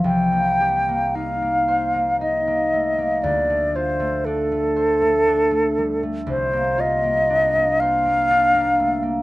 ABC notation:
X:1
M:3/4
L:1/16
Q:1/4=59
K:Cdor
V:1 name="Flute"
g4 f4 e4 | d2 c2 A8 | c2 e4 f4- f z |]
V:2 name="Harp"
[C,,G,G] B, G B, E B, c B, E B, A, B, | D,, A, F A, D A, c A, D A, G, A, | C,, B, F B, D B, c B, D B, A, B, |]